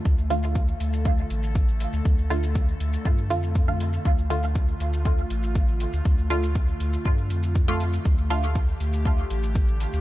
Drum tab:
HH |--o---o---o---o-|--o---o---o---o-|--o---o---o---o-|--o---o---o---o-|
SH |xx-xxx-xxx-xxx-x|xx-xxx-xxx-xxx-x|xx-xxx-xxx-xxx-x|xx-xxx-xxx-xxx-x|
BD |o---o---o---o---|o---o---o---o---|o---o---o---o---|o---o---o---o---|

HH |--o---o---o---o-|
SH |xx-xxx-xxx-xxx-x|
BD |o---o---o---o---|